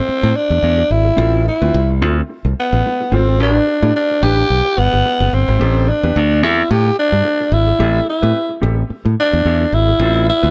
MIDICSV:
0, 0, Header, 1, 6, 480
1, 0, Start_track
1, 0, Key_signature, 0, "minor"
1, 0, Tempo, 551471
1, 1029, Time_signature, 4, 2, 24, 8
1, 9143, End_track
2, 0, Start_track
2, 0, Title_t, "Clean electric guitar"
2, 0, Program_c, 0, 27
2, 1015, Note_on_c, 0, 60, 81
2, 1023, Note_on_c, 0, 65, 93
2, 1028, Note_on_c, 0, 69, 91
2, 1245, Note_off_c, 0, 60, 0
2, 1249, Note_off_c, 0, 65, 0
2, 1252, Note_off_c, 0, 69, 0
2, 1408, Note_on_c, 0, 71, 74
2, 1414, Note_on_c, 0, 65, 71
2, 1417, Note_on_c, 0, 60, 64
2, 1533, Note_off_c, 0, 71, 0
2, 1537, Note_off_c, 0, 65, 0
2, 1538, Note_off_c, 0, 60, 0
2, 1756, Note_on_c, 0, 60, 101
2, 1762, Note_on_c, 0, 65, 97
2, 1768, Note_on_c, 0, 69, 100
2, 1886, Note_off_c, 0, 69, 0
2, 1891, Note_off_c, 0, 65, 0
2, 1939, Note_off_c, 0, 60, 0
2, 2714, Note_on_c, 0, 60, 95
2, 2726, Note_on_c, 0, 65, 106
2, 2726, Note_on_c, 0, 69, 100
2, 2843, Note_off_c, 0, 69, 0
2, 2849, Note_off_c, 0, 65, 0
2, 2853, Note_on_c, 0, 69, 67
2, 2855, Note_off_c, 0, 60, 0
2, 2860, Note_on_c, 0, 65, 67
2, 2865, Note_on_c, 0, 60, 59
2, 2946, Note_off_c, 0, 60, 0
2, 2949, Note_on_c, 0, 61, 82
2, 2955, Note_off_c, 0, 65, 0
2, 2959, Note_on_c, 0, 66, 86
2, 2960, Note_off_c, 0, 69, 0
2, 2963, Note_on_c, 0, 71, 90
2, 3045, Note_off_c, 0, 61, 0
2, 3045, Note_on_c, 0, 62, 82
2, 3055, Note_off_c, 0, 66, 0
2, 3055, Note_on_c, 0, 67, 86
2, 3173, Note_off_c, 0, 62, 0
2, 3178, Note_off_c, 0, 67, 0
2, 3181, Note_off_c, 0, 71, 0
2, 3332, Note_on_c, 0, 74, 73
2, 3339, Note_on_c, 0, 67, 77
2, 3345, Note_on_c, 0, 62, 67
2, 3457, Note_off_c, 0, 74, 0
2, 3460, Note_off_c, 0, 67, 0
2, 3463, Note_off_c, 0, 62, 0
2, 3679, Note_on_c, 0, 62, 91
2, 3684, Note_on_c, 0, 67, 94
2, 3685, Note_on_c, 0, 71, 106
2, 3805, Note_off_c, 0, 71, 0
2, 3811, Note_off_c, 0, 67, 0
2, 3861, Note_off_c, 0, 62, 0
2, 4869, Note_on_c, 0, 60, 88
2, 4880, Note_on_c, 0, 67, 105
2, 4884, Note_on_c, 0, 69, 91
2, 5094, Note_off_c, 0, 60, 0
2, 5099, Note_off_c, 0, 67, 0
2, 5101, Note_off_c, 0, 69, 0
2, 5256, Note_on_c, 0, 71, 77
2, 5262, Note_on_c, 0, 67, 72
2, 5267, Note_on_c, 0, 60, 60
2, 5379, Note_off_c, 0, 71, 0
2, 5382, Note_off_c, 0, 67, 0
2, 5385, Note_off_c, 0, 60, 0
2, 5596, Note_on_c, 0, 60, 90
2, 5602, Note_on_c, 0, 67, 105
2, 5607, Note_on_c, 0, 69, 97
2, 5723, Note_off_c, 0, 69, 0
2, 5729, Note_off_c, 0, 67, 0
2, 5780, Note_off_c, 0, 60, 0
2, 6782, Note_on_c, 0, 60, 73
2, 6787, Note_on_c, 0, 67, 90
2, 6792, Note_on_c, 0, 69, 86
2, 7010, Note_off_c, 0, 60, 0
2, 7013, Note_off_c, 0, 67, 0
2, 7015, Note_off_c, 0, 69, 0
2, 7157, Note_on_c, 0, 71, 80
2, 7161, Note_on_c, 0, 67, 68
2, 7167, Note_on_c, 0, 60, 55
2, 7289, Note_off_c, 0, 71, 0
2, 7291, Note_off_c, 0, 67, 0
2, 7294, Note_off_c, 0, 60, 0
2, 7499, Note_on_c, 0, 60, 89
2, 7505, Note_on_c, 0, 67, 90
2, 7512, Note_on_c, 0, 69, 89
2, 7623, Note_off_c, 0, 69, 0
2, 7633, Note_off_c, 0, 67, 0
2, 7691, Note_off_c, 0, 60, 0
2, 8701, Note_on_c, 0, 60, 96
2, 8711, Note_on_c, 0, 65, 104
2, 8713, Note_on_c, 0, 69, 103
2, 8929, Note_off_c, 0, 60, 0
2, 8933, Note_off_c, 0, 65, 0
2, 8935, Note_off_c, 0, 69, 0
2, 9075, Note_on_c, 0, 71, 81
2, 9082, Note_on_c, 0, 65, 79
2, 9085, Note_on_c, 0, 60, 67
2, 9143, Note_off_c, 0, 60, 0
2, 9143, Note_off_c, 0, 65, 0
2, 9143, Note_off_c, 0, 71, 0
2, 9143, End_track
3, 0, Start_track
3, 0, Title_t, "Tenor saxophone"
3, 0, Program_c, 1, 66
3, 0, Note_on_c, 1, 60, 101
3, 317, Note_on_c, 1, 62, 110
3, 330, Note_off_c, 1, 60, 0
3, 799, Note_on_c, 1, 64, 95
3, 812, Note_off_c, 1, 62, 0
3, 1274, Note_off_c, 1, 64, 0
3, 1286, Note_on_c, 1, 64, 83
3, 1725, Note_off_c, 1, 64, 0
3, 2261, Note_on_c, 1, 59, 99
3, 2737, Note_on_c, 1, 60, 85
3, 2750, Note_off_c, 1, 59, 0
3, 2964, Note_off_c, 1, 60, 0
3, 2975, Note_on_c, 1, 62, 104
3, 3411, Note_off_c, 1, 62, 0
3, 3444, Note_on_c, 1, 62, 110
3, 3686, Note_on_c, 1, 67, 127
3, 3699, Note_off_c, 1, 62, 0
3, 4163, Note_on_c, 1, 59, 108
3, 4176, Note_off_c, 1, 67, 0
3, 4643, Note_on_c, 1, 60, 88
3, 4656, Note_off_c, 1, 59, 0
3, 5127, Note_on_c, 1, 62, 103
3, 5140, Note_off_c, 1, 60, 0
3, 5600, Note_off_c, 1, 62, 0
3, 5604, Note_on_c, 1, 64, 92
3, 5838, Note_on_c, 1, 67, 98
3, 5851, Note_off_c, 1, 64, 0
3, 6075, Note_off_c, 1, 67, 0
3, 6084, Note_on_c, 1, 62, 106
3, 6558, Note_on_c, 1, 64, 95
3, 6571, Note_off_c, 1, 62, 0
3, 7035, Note_off_c, 1, 64, 0
3, 7042, Note_on_c, 1, 64, 80
3, 7483, Note_off_c, 1, 64, 0
3, 8006, Note_on_c, 1, 62, 115
3, 8479, Note_on_c, 1, 64, 104
3, 8492, Note_off_c, 1, 62, 0
3, 8954, Note_off_c, 1, 64, 0
3, 8959, Note_on_c, 1, 64, 106
3, 9143, Note_off_c, 1, 64, 0
3, 9143, End_track
4, 0, Start_track
4, 0, Title_t, "Fingered electric bass"
4, 0, Program_c, 2, 33
4, 202, Note_on_c, 2, 45, 98
4, 274, Note_off_c, 2, 45, 0
4, 437, Note_on_c, 2, 40, 85
4, 511, Note_off_c, 2, 40, 0
4, 546, Note_on_c, 2, 40, 97
4, 711, Note_off_c, 2, 40, 0
4, 787, Note_on_c, 2, 32, 82
4, 952, Note_off_c, 2, 32, 0
4, 1027, Note_on_c, 2, 33, 120
4, 1284, Note_off_c, 2, 33, 0
4, 1406, Note_on_c, 2, 38, 89
4, 1478, Note_off_c, 2, 38, 0
4, 1517, Note_on_c, 2, 36, 119
4, 1758, Note_off_c, 2, 36, 0
4, 1758, Note_on_c, 2, 38, 97
4, 1919, Note_off_c, 2, 38, 0
4, 2130, Note_on_c, 2, 36, 89
4, 2200, Note_off_c, 2, 36, 0
4, 2373, Note_on_c, 2, 33, 88
4, 2443, Note_off_c, 2, 33, 0
4, 2715, Note_on_c, 2, 32, 81
4, 2958, Note_off_c, 2, 32, 0
4, 2958, Note_on_c, 2, 33, 113
4, 3120, Note_off_c, 2, 33, 0
4, 3329, Note_on_c, 2, 45, 95
4, 3400, Note_off_c, 2, 45, 0
4, 3679, Note_on_c, 2, 33, 109
4, 3841, Note_off_c, 2, 33, 0
4, 3918, Note_on_c, 2, 35, 91
4, 4008, Note_off_c, 2, 35, 0
4, 4159, Note_on_c, 2, 31, 89
4, 4248, Note_off_c, 2, 31, 0
4, 4295, Note_on_c, 2, 31, 84
4, 4365, Note_off_c, 2, 31, 0
4, 4529, Note_on_c, 2, 30, 91
4, 4600, Note_off_c, 2, 30, 0
4, 4638, Note_on_c, 2, 31, 82
4, 4728, Note_off_c, 2, 31, 0
4, 4771, Note_on_c, 2, 32, 92
4, 4842, Note_off_c, 2, 32, 0
4, 4882, Note_on_c, 2, 33, 122
4, 5134, Note_off_c, 2, 33, 0
4, 5252, Note_on_c, 2, 40, 86
4, 5322, Note_off_c, 2, 40, 0
4, 5361, Note_on_c, 2, 38, 104
4, 5597, Note_off_c, 2, 38, 0
4, 5597, Note_on_c, 2, 40, 99
4, 5759, Note_off_c, 2, 40, 0
4, 5837, Note_on_c, 2, 45, 111
4, 5999, Note_off_c, 2, 45, 0
4, 6200, Note_on_c, 2, 43, 79
4, 6275, Note_off_c, 2, 43, 0
4, 6543, Note_on_c, 2, 32, 93
4, 6710, Note_off_c, 2, 32, 0
4, 6790, Note_on_c, 2, 33, 115
4, 6954, Note_off_c, 2, 33, 0
4, 7163, Note_on_c, 2, 45, 99
4, 7236, Note_off_c, 2, 45, 0
4, 7511, Note_on_c, 2, 33, 99
4, 7675, Note_off_c, 2, 33, 0
4, 7881, Note_on_c, 2, 45, 92
4, 7954, Note_off_c, 2, 45, 0
4, 8123, Note_on_c, 2, 40, 76
4, 8196, Note_off_c, 2, 40, 0
4, 8228, Note_on_c, 2, 40, 84
4, 8393, Note_off_c, 2, 40, 0
4, 8465, Note_on_c, 2, 32, 86
4, 8631, Note_off_c, 2, 32, 0
4, 8699, Note_on_c, 2, 33, 119
4, 8958, Note_off_c, 2, 33, 0
4, 9081, Note_on_c, 2, 38, 88
4, 9143, Note_off_c, 2, 38, 0
4, 9143, End_track
5, 0, Start_track
5, 0, Title_t, "Muted clean electric guitar strokes"
5, 67, Note_on_c, 9, 29, 39
5, 154, Note_off_c, 9, 29, 0
5, 204, Note_on_c, 9, 29, 50
5, 291, Note_off_c, 9, 29, 0
5, 447, Note_on_c, 9, 29, 49
5, 534, Note_off_c, 9, 29, 0
5, 544, Note_on_c, 9, 29, 49
5, 631, Note_off_c, 9, 29, 0
5, 676, Note_on_c, 9, 29, 55
5, 763, Note_off_c, 9, 29, 0
5, 913, Note_on_c, 9, 29, 57
5, 1000, Note_off_c, 9, 29, 0
5, 1267, Note_on_c, 9, 29, 45
5, 1354, Note_off_c, 9, 29, 0
5, 1653, Note_on_c, 9, 29, 50
5, 1740, Note_off_c, 9, 29, 0
5, 1896, Note_on_c, 9, 29, 48
5, 1983, Note_off_c, 9, 29, 0
5, 1997, Note_on_c, 9, 29, 37
5, 2084, Note_off_c, 9, 29, 0
5, 2137, Note_on_c, 9, 29, 50
5, 2224, Note_off_c, 9, 29, 0
5, 2377, Note_on_c, 9, 29, 48
5, 2464, Note_off_c, 9, 29, 0
5, 2490, Note_on_c, 9, 29, 41
5, 2577, Note_off_c, 9, 29, 0
5, 2617, Note_on_c, 9, 29, 54
5, 2704, Note_off_c, 9, 29, 0
5, 3201, Note_on_c, 9, 29, 33
5, 3288, Note_off_c, 9, 29, 0
5, 3574, Note_on_c, 9, 29, 51
5, 3661, Note_off_c, 9, 29, 0
5, 3815, Note_on_c, 9, 29, 46
5, 3902, Note_off_c, 9, 29, 0
5, 3920, Note_on_c, 9, 29, 46
5, 4007, Note_off_c, 9, 29, 0
5, 4050, Note_on_c, 9, 29, 57
5, 4137, Note_off_c, 9, 29, 0
5, 4286, Note_on_c, 9, 29, 39
5, 4373, Note_off_c, 9, 29, 0
5, 4400, Note_on_c, 9, 29, 37
5, 4487, Note_off_c, 9, 29, 0
5, 4528, Note_on_c, 9, 29, 49
5, 4615, Note_off_c, 9, 29, 0
5, 4776, Note_on_c, 9, 29, 50
5, 4863, Note_off_c, 9, 29, 0
5, 5118, Note_on_c, 9, 29, 41
5, 5205, Note_off_c, 9, 29, 0
5, 5499, Note_on_c, 9, 29, 44
5, 5586, Note_off_c, 9, 29, 0
5, 5733, Note_on_c, 9, 29, 55
5, 5820, Note_off_c, 9, 29, 0
5, 5837, Note_on_c, 9, 29, 45
5, 5924, Note_off_c, 9, 29, 0
5, 5970, Note_on_c, 9, 29, 52
5, 6057, Note_off_c, 9, 29, 0
5, 6204, Note_on_c, 9, 29, 54
5, 6291, Note_off_c, 9, 29, 0
5, 6302, Note_on_c, 9, 29, 47
5, 6389, Note_off_c, 9, 29, 0
5, 6447, Note_on_c, 9, 29, 52
5, 6534, Note_off_c, 9, 29, 0
5, 6678, Note_on_c, 9, 29, 59
5, 6765, Note_off_c, 9, 29, 0
5, 7023, Note_on_c, 9, 29, 37
5, 7110, Note_off_c, 9, 29, 0
5, 7393, Note_on_c, 9, 29, 44
5, 7480, Note_off_c, 9, 29, 0
5, 7634, Note_on_c, 9, 29, 60
5, 7721, Note_off_c, 9, 29, 0
5, 7741, Note_on_c, 9, 29, 43
5, 7828, Note_off_c, 9, 29, 0
5, 7876, Note_on_c, 9, 29, 61
5, 7963, Note_off_c, 9, 29, 0
5, 8120, Note_on_c, 9, 29, 52
5, 8207, Note_off_c, 9, 29, 0
5, 8232, Note_on_c, 9, 29, 44
5, 8319, Note_off_c, 9, 29, 0
5, 8367, Note_on_c, 9, 29, 51
5, 8455, Note_off_c, 9, 29, 0
5, 8601, Note_on_c, 9, 29, 50
5, 8688, Note_off_c, 9, 29, 0
5, 8948, Note_on_c, 9, 29, 41
5, 9035, Note_off_c, 9, 29, 0
5, 9143, End_track
6, 0, Start_track
6, 0, Title_t, "Muted fingered electric bass strokes"
6, 75, Note_on_c, 9, 29, 51
6, 162, Note_off_c, 9, 29, 0
6, 7749, Note_on_c, 9, 29, 49
6, 7836, Note_off_c, 9, 29, 0
6, 9143, End_track
0, 0, End_of_file